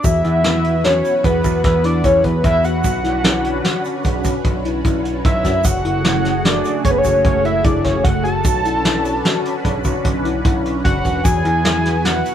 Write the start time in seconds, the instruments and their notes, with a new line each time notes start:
0.04 picked electric bass E2, analog synth pad B3 E4 F#4 B4, tine electric piano F#4, analog synth lead E5, kick, closed hi-hat, shaker
0.24 picked electric bass E2, tine electric piano E4, closed hi-hat
0.44 tine electric piano E4, snare, closed hi-hat
0.64 closed hi-hat
0.84 tine electric piano F#4, analog synth lead C#5, snare, closed hi-hat
1.04 closed hi-hat, shaker
1.24 picked electric bass E2, tine electric piano G#4, analog synth lead B4, kick, closed hi-hat, shaker
1.44 picked electric bass E2, tine electric piano F#4, kick, closed hi-hat, shaker
1.64 picked electric bass E2, analog synth lead B4, kick, snare, closed hi-hat
1.84 tine electric piano E4, analog synth lead D5, closed hi-hat
2.04 picked electric bass E2, tine electric piano E4, analog synth lead C#5, kick, closed hi-hat, shaker
2.24 picked electric bass E2, analog synth lead B4, kick, closed hi-hat
2.44 picked electric bass E2, analog synth lead E5, kick, closed hi-hat
2.64 tine electric piano F#4, analog synth lead F#5, closed hi-hat, shaker
2.84 picked electric bass B1, analog synth pad C#4 D4 F#4 B4, tine electric piano F#4, kick, closed hi-hat, shaker
3.04 tine electric piano E4, snare, closed hi-hat
3.24 tine electric piano E4, snare, closed hi-hat
3.44 closed hi-hat
3.64 tine electric piano F#4, snare, closed hi-hat
3.84 closed hi-hat, shaker
4.04 picked electric bass B1, tine electric piano G#4, kick, closed hi-hat, shaker
4.24 picked electric bass B1, tine electric piano F#4, kick, closed hi-hat, shaker
4.45 picked electric bass B1, kick, closed hi-hat
4.65 tine electric piano E4, closed hi-hat
4.84 picked electric bass B1, tine electric piano E4, kick, closed hi-hat, shaker
5.05 closed hi-hat
5.25 picked electric bass B1, analog synth lead E5, kick, closed hi-hat
5.45 picked electric bass F#2, tine electric piano F#4, kick, snare, closed hi-hat, shaker
5.64 picked electric bass F#1, analog synth pad C#3 A3 F#4 G#4, tine electric piano F#4, analog synth lead F#5, kick, closed hi-hat, shaker
5.84 picked electric bass F#1, tine electric piano E4, closed hi-hat
6.05 tine electric piano E4, snare, closed hi-hat
6.25 snare, closed hi-hat
6.45 tine electric piano F#4, analog synth lead D5, snare, closed hi-hat
6.64 closed hi-hat, shaker
6.84 picked electric bass F#1, tine electric piano G#4, analog synth lead C#5, kick, closed hi-hat, shaker
6.91 analog synth lead B4
6.98 analog synth lead C#5
7.04 picked electric bass F#1, tine electric piano F#4, kick, closed hi-hat, shaker
7.25 picked electric bass F#1, analog synth lead C#5, kick, closed hi-hat
7.44 tine electric piano E4, analog synth lead E5, closed hi-hat
7.64 picked electric bass F#1, tine electric piano E4, analog synth lead D5, kick, closed hi-hat, shaker
7.84 picked electric bass F#1, analog synth lead C#5, kick, snare, closed hi-hat
8.04 picked electric bass F#1, analog synth lead F#5, kick, closed hi-hat
8.24 tine electric piano F#4, analog synth lead A5, closed hi-hat
8.44 picked electric bass B1, analog synth pad C#4 D4 F#4 B4, tine electric piano F#4, kick, closed hi-hat, shaker
8.65 tine electric piano E4, closed hi-hat, shaker
8.85 tine electric piano E4, snare, closed hi-hat
9.05 closed hi-hat, shaker
9.25 tine electric piano F#4, snare, closed hi-hat
9.45 closed hi-hat
9.65 picked electric bass B1, tine electric piano G#4, kick, closed hi-hat
9.84 picked electric bass B1, tine electric piano F#4, kick, closed hi-hat, shaker
10.05 picked electric bass B1, kick, closed hi-hat, shaker
10.25 tine electric piano E4, closed hi-hat
10.45 picked electric bass B1, tine electric piano E4, kick, closed hi-hat
10.65 closed hi-hat
10.84 picked electric bass F#1, analog synth lead F#5, kick, closed hi-hat
11.05 picked electric bass E1, tine electric piano F#4, kick, closed hi-hat, shaker
11.24 picked electric bass E2, analog synth pad B3 E4 F#4 B4, tine electric piano F#4, analog synth lead G#5, kick, closed hi-hat, shaker
11.45 picked electric bass E2, tine electric piano E4, closed hi-hat
11.65 tine electric piano E4, snare, closed hi-hat
11.85 snare, closed hi-hat
12.05 tine electric piano F#4, analog synth lead F#5, snare, closed hi-hat
12.25 closed hi-hat, shaker